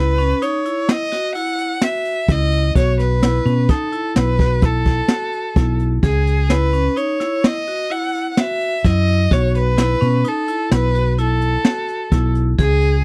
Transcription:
Already playing: fingered electric bass C#2, vibraphone E4, violin B4
0.18 vibraphone C#4, closed hi-hat
0.42 vibraphone D#4, violin C#5, closed hi-hat
0.65 vibraphone E4, closed hi-hat
0.89 violin D#5, snare, closed hi-hat
1.12 vibraphone F#4, snare, closed hi-hat
1.35 vibraphone E4, violin F#5, closed hi-hat
1.58 closed hi-hat
1.82 vibraphone F#4, violin E5, snare, closed hi-hat
2.05 closed hi-hat
2.28 fingered electric bass C#2, vibraphone E4, violin D#5, kick, closed hi-hat
2.51 closed hi-hat
2.75 fingered electric bass B1, vibraphone F#4, violin C#5, kick, closed hi-hat
2.99 violin B4, snare, closed hi-hat
3.23 vibraphone E4, snare, closed hi-hat
3.46 fingered electric bass B2, vibraphone C#4, closed hi-hat
3.69 vibraphone D#4, violin A4, kick, closed hi-hat
3.92 vibraphone E4, closed hi-hat
4.16 fingered electric bass B1, violin B4, snare, closed hi-hat
4.39 vibraphone F#4, kick, closed hi-hat
4.62 vibraphone E4, violin A4, kick, closed hi-hat
4.85 kick, closed hi-hat
5.08 vibraphone F#4, snare, closed hi-hat
5.33 closed hi-hat
5.56 fingered electric bass B1, vibraphone E4, kick, closed hi-hat
5.79 closed hi-hat
6.03 fingered electric bass C#2, vibraphone G#4, violin G#4, kick, closed hi-hat
6.27 closed hi-hat
6.50 vibraphone E4, violin B4, snare, closed hi-hat
6.73 vibraphone C#4, closed hi-hat
6.96 vibraphone D#4, violin C#5, closed hi-hat
7.20 vibraphone E4, snare, closed hi-hat
7.44 violin D#5, snare, closed hi-hat
7.67 vibraphone F#4, closed hi-hat
7.90 vibraphone E4, violin F#5, closed hi-hat
8.15 closed hi-hat
8.32 violin F#5
8.37 vibraphone F#4, violin E5, snare, closed hi-hat
8.61 closed hi-hat
8.85 fingered electric bass F#2, vibraphone E4, violin D#5, kick, closed hi-hat
9.08 closed hi-hat
9.31 fingered electric bass B1, vibraphone F#4, violin C#5, kick, closed hi-hat
9.55 violin B4, closed hi-hat
9.78 vibraphone E4, snare, closed hi-hat
10.01 fingered electric bass B2, vibraphone C#4, closed hi-hat
10.24 vibraphone D#4, violin A4, closed hi-hat
10.48 vibraphone E4, closed hi-hat
10.71 fingered electric bass B1, violin B4, snare, closed hi-hat
10.95 vibraphone F#4, closed hi-hat
11.18 vibraphone E4, violin A4, closed hi-hat
11.41 closed hi-hat
11.65 vibraphone F#4, snare, closed hi-hat
11.88 closed hi-hat
12.12 fingered electric bass B1, vibraphone E4, kick, closed hi-hat
12.35 closed hi-hat
12.58 fingered electric bass C#2, vibraphone G#4, violin G#4, kick, closed hi-hat
12.82 closed hi-hat

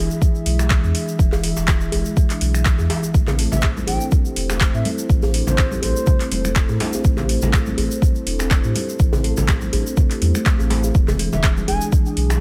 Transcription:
Already playing: analog synth pad E4 G#4 E5
0.10 shaker
0.22 kick, shaker
0.35 shaker
0.46 sub bass B1, marimba G#3, open hi-hat
0.59 marimba G#3, finger snap, djembe slap, shaker
0.70 marimba E3, finger snap, kick, clap, shaker
0.83 sub bass E2, marimba D4, shaker
0.95 open hi-hat
1.08 marimba E3, shaker
1.19 sub bass E1, marimba E3, kick, shaker
1.32 clap, djembe tone, djembe bass, shaker
1.43 marimba E3, open hi-hat, djembe tone
1.56 sub bass E1, djembe slap, shaker
1.68 finger snap, kick, clap, djembe tone, shaker
1.81 shaker
1.92 sub bass E1, marimba G#3, open hi-hat, djembe bass
2.05 marimba G#3, shaker
2.17 marimba E3, kick, shaker
2.30 marimba D4, clap, open hi-hat, shaker
2.41 sub bass B1, open hi-hat
2.54 marimba E3, finger snap, shaker
2.65 finger snap, kick, clap, shaker
2.78 sub bass E2, djembe tone, shaker
2.90 marimba E3, open hi-hat, djembe slap
3.03 djembe tone, shaker
3.14 sub bass A1, analog synth pad A3 E4 A4 C5, kick, shaker
3.27 marimba C4, clap, muted conga, djembe tone, low conga, djembe bass, shaker
3.39 marimba A3, open hi-hat
3.51 sub bass A1, bansuri E5, djembe slap, high conga, low conga, shaker
3.61 finger snap, kick, clap, muted conga, djembe tone, shaker
3.77 high conga, shaker
3.87 sub bass A1, marimba D4, bansuri G5, open hi-hat, djembe bass
4.00 marimba C4, shaker
4.11 marimba A3, kick, muted conga, high conga, shaker
4.25 marimba G4, shaker
4.36 sub bass E1, open hi-hat
4.50 marimba A3, finger snap, djembe slap, muted conga, shaker
4.61 finger snap, kick, clap, shaker
4.74 sub bass A2, marimba C4, bansuri E5, shaker
4.85 marimba A3, open hi-hat, muted conga, high conga
4.98 shaker
5.10 sub bass A1, kick, shaker
5.22 muted conga, djembe tone, djembe bass, shaker
5.33 marimba D4, open hi-hat, djembe tone
5.47 sub bass A1, marimba C4, bansuri C5, djembe slap, high conga, low conga, shaker
5.58 finger snap, kick, clap, djembe tone, shaker
5.71 marimba G4, high conga, shaker
5.82 sub bass A1, bansuri C5, open hi-hat, djembe bass
5.96 marimba A3, shaker
6.06 kick, muted conga, high conga, low conga, shaker
6.20 marimba C4, clap, open hi-hat, shaker
6.32 sub bass E1, marimba A3, open hi-hat, high conga
6.45 finger snap, muted conga, high conga, shaker
6.56 finger snap, kick, clap, shaker
6.69 sub bass A2, djembe tone, shaker
6.80 marimba D4, open hi-hat, muted conga, djembe slap, high conga
6.93 marimba C4, djembe tone, shaker
7.04 sub bass A1, kick, shaker
7.17 marimba G4, clap, muted conga, djembe tone, djembe bass, low conga, shaker
7.29 open hi-hat
7.42 sub bass A1, marimba A3, djembe slap, high conga, low conga, shaker
7.53 marimba A3, finger snap, kick, clap, djembe tone, shaker
7.66 marimba C4, high conga, shaker
7.78 sub bass A1, marimba A3, open hi-hat, djembe bass
7.91 shaker
8.02 kick, muted conga, high conga, shaker
8.15 shaker
8.26 sub bass E1, marimba D4, open hi-hat
8.39 marimba C4, finger snap, djembe slap, muted conga, shaker
8.51 marimba A3, finger snap, kick, clap, shaker
8.64 sub bass A2, marimba G4, shaker
8.75 open hi-hat, muted conga, high conga
8.89 marimba A3, shaker
8.99 sub bass A1, marimba A3, kick, shaker
9.13 marimba C4, muted conga, djembe tone, djembe bass, low conga, shaker
9.24 marimba A3, open hi-hat, djembe tone
9.37 sub bass A1, djembe slap, high conga, low conga, shaker
9.48 finger snap, kick, clap, djembe tone, shaker
9.61 high conga, shaker
9.73 sub bass A1, marimba D4, open hi-hat, djembe bass
9.86 marimba C4, shaker
9.97 kick, muted conga, high conga, low conga, shaker
10.11 marimba G4, clap, open hi-hat, shaker
10.22 sub bass E2, open hi-hat, high conga
10.35 marimba A3, finger snap, muted conga, high conga, shaker
10.46 marimba A3, finger snap, kick, clap, shaker
10.59 sub bass A1, marimba C4, djembe tone, shaker
10.70 marimba A3, open hi-hat, djembe slap, muted conga, high conga
10.83 djembe tone, shaker
10.95 sub bass E1, marimba E3, analog synth pad D4 G#4, kick, shaker
11.08 marimba G#3, clap, muted conga, djembe tone, low conga, djembe bass, shaker
11.19 marimba E3, open hi-hat
11.32 sub bass E1, bansuri E5, djembe slap, high conga, low conga, shaker
11.43 finger snap, kick, clap, djembe tone, shaker
11.57 high conga, shaker
11.68 sub bass E1, marimba G#3, bansuri G#5, open hi-hat, djembe bass
11.81 marimba G#3, shaker
11.92 marimba E3, kick, muted conga, high conga, shaker
12.06 marimba D4, shaker
12.17 sub bass B1, open hi-hat
12.30 marimba E3, finger snap, djembe slap, muted conga, shaker

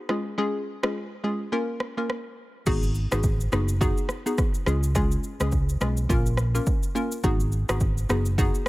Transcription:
0.09 synth pluck G#3 C#4 F4 G#4, cross-stick
0.38 synth pluck G#3 C#4 F4 G#4
0.83 synth pluck G#3 C#4 F4 G#4, cross-stick
1.24 synth pluck G#3 C#4 F4 G#4
1.52 synth pluck A#3 C#4 F4 A#4
1.80 cross-stick
1.97 synth pluck A#3 C#4 F4 A#4
2.10 cross-stick
2.66 fingered electric bass G#1, synth pluck B3 D#4 F#4 G#4, kick, crash, shaker
2.83 shaker
2.95 shaker
3.11 fingered electric bass G#1, synth pluck B3 D#4 F#4 G#4, cross-stick, shaker
3.23 kick, shaker
3.41 shaker
3.52 fingered electric bass F#1, synth pluck B3 D#4 F#4 G#4, cross-stick, shaker
3.68 shaker
3.81 synth pluck B3 D#4 F#4 G#4, kick, shaker
3.98 shaker
4.09 cross-stick, shaker
4.26 synth pluck B3 D#4 F#4 G#4, shaker
4.38 kick, cross-stick, shaker
4.54 shaker
4.66 fingered electric bass C#2, synth pluck G#3 C#4 F4 G#4, cross-stick, shaker
4.83 shaker
4.95 synth pluck G#3 C#4 F4 G#4, kick, shaker
5.12 shaker
5.24 shaker
5.40 fingered electric bass C#2, synth pluck G#3 C#4 F4 G#4, cross-stick, shaker
5.52 kick, shaker
5.69 shaker
5.81 fingered electric bass B1, synth pluck G#3 C#4 F4 G#4, cross-stick, shaker
5.97 shaker
6.09 fingered electric bass A#1, synth pluck A#3 C#4 F4 A#4, kick, shaker
6.26 shaker
6.37 cross-stick, shaker
6.54 synth pluck A#3 C#4 F4 A#4, shaker
6.67 kick, shaker
6.83 shaker
6.95 synth pluck A#3 C#4 F4 A#4, shaker
7.12 shaker
7.24 fingered electric bass G#1, synth pluck B3 D#4 F#4 G#4, kick, shaker
7.40 shaker
7.52 shaker
7.69 fingered electric bass G#1, synth pluck B3 D#4 F#4 G#4, cross-stick, shaker
7.80 kick, shaker
7.98 shaker
8.09 fingered electric bass F#1, synth pluck B3 D#4 F#4 G#4, cross-stick, shaker
8.26 shaker
8.38 synth pluck B3 D#4 F#4 G#4, kick, shaker
8.55 shaker

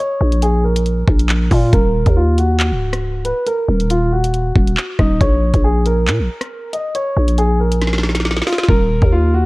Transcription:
0.00 grand piano C#5
0.21 808-style bass A#1
0.32 closed hi-hat
0.42 grand piano G#4, closed hi-hat
0.64 grand piano A#4
0.76 closed hi-hat
0.86 closed hi-hat
1.08 808-style bass A#1, kick
1.20 closed hi-hat
1.29 clap
1.51 808-style bass A#2, grand piano F4, kick, open hi-hat
1.73 808-style bass D#1, grand piano A#4, kick, closed hi-hat
2.06 808-style bass D#2, kick, closed hi-hat
2.16 grand piano F4
2.38 grand piano F#4, closed hi-hat
2.60 clap, closed hi-hat
2.71 808-style bass C#1
2.93 cross-stick, closed hi-hat
3.25 grand piano B4, closed hi-hat
3.47 grand piano A#4, closed hi-hat
3.68 808-style bass D#1
3.80 closed hi-hat
3.90 grand piano F4, closed hi-hat
4.12 grand piano F#4
4.24 closed hi-hat
4.34 closed hi-hat
4.55 808-style bass D#1, kick
4.67 closed hi-hat
4.77 clap
4.99 808-style bass D#1, grand piano D#4, kick, cross-stick
5.21 808-style bass A#1, grand piano C#5, kick, closed hi-hat
5.54 808-style bass A#1, kick, closed hi-hat
5.64 grand piano G#4
5.86 grand piano A#4, closed hi-hat
6.08 808-style bass A#2, clap, closed hi-hat
6.19 808-style bass A#1
6.41 cross-stick, closed hi-hat
6.73 grand piano D#5, closed hi-hat
6.95 grand piano C#5, closed hi-hat
7.16 808-style bass A#1
7.28 closed hi-hat
7.38 grand piano G#4, closed hi-hat
7.60 grand piano A#4
7.72 closed hi-hat
7.82 snare, closed hi-hat
7.87 snare
7.93 snare
7.98 snare
8.03 snare
8.09 snare
8.15 snare, closed hi-hat
8.20 snare
8.25 snare
8.31 snare
8.37 snare
8.42 snare
8.47 grand piano F4, snare, open hi-hat
8.53 snare
8.58 snare
8.63 snare
8.69 808-style bass D#1, grand piano A#4, kick
9.02 808-style bass D#2, kick
9.12 grand piano F4
9.34 grand piano F#4

